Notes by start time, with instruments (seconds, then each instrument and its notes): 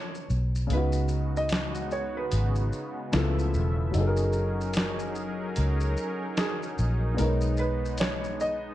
Already playing: upright piano C#3 B3 C#4 F4, felt piano C#5
0.15 shaker
0.30 fingered electric bass B1, shaker
0.55 shaker
0.67 fingered electric bass C#2, upright piano C#3 B3, analog synth pad C#3 G#3 B3 D#4 F#4, closed hi-hat, shaker
0.73 upright piano D#4 F#4, felt piano B4
0.92 shaker
1.08 shaker
1.37 felt piano D#5, shaker
1.49 snare, closed hi-hat, shaker
1.75 shaker
1.91 felt piano C#5, shaker
2.17 felt piano B4
2.32 fingered electric bass G#1, closed hi-hat, shaker
2.56 shaker
2.73 shaker
3.12 fingered electric bass C#2, upright piano C#3 B3 E4 F4, analog synth pad F3 A3 E5, snare, closed hi-hat, shaker
3.17 upright piano A4
3.39 shaker
3.54 fingered electric bass E1, shaker
3.91 fingered electric bass F#1, upright piano F#3 D#4, analog synth pad F#3 C#4 D#4 G#4 A#4, closed hi-hat, shaker
3.97 upright piano G#4 A4
4.07 upright piano A#4
4.17 shaker
4.33 shaker
4.61 shaker
4.74 snare, closed hi-hat, shaker
4.99 shaker
5.15 shaker
5.56 fingered electric bass C#2, closed hi-hat, shaker
5.81 shaker
5.97 shaker
6.37 felt piano G#4, snare, closed hi-hat, shaker
6.63 shaker
6.78 fingered electric bass A#1, shaker
7.14 upright piano G#3 B3
7.18 fingered electric bass B1, analog synth pad G#3 B3, upright piano D#4, felt piano A#4, closed hi-hat, shaker
7.24 upright piano C#5
7.41 shaker
7.57 felt piano B4, shaker
7.85 shaker
7.98 felt piano C#5, snare, closed hi-hat, shaker
8.24 shaker
8.40 felt piano D#5, shaker